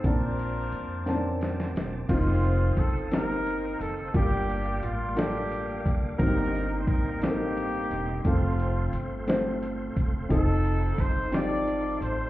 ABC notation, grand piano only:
X:1
M:6/8
L:1/8
Q:3/8=58
K:Fmix
V:1 name="Grand piano"
[B,CDa]2 z [B,C_D=Da]2 z | [B,CEF]2 z [B,CEG]2 z | [B,DFG]2 z [B,DFA]2 z | [B,CE_G=G]2 z [B,CEAB]2 z |
[A,CFA]2 z [A,CFc]2 z | [CEFA]2 z [CEFG]2 z |]
V:2 name="Grand piano" clef=bass
B,,3 z3 | z6 | G,,3 z3 | G,,3 z3 |
z6 | z6 |]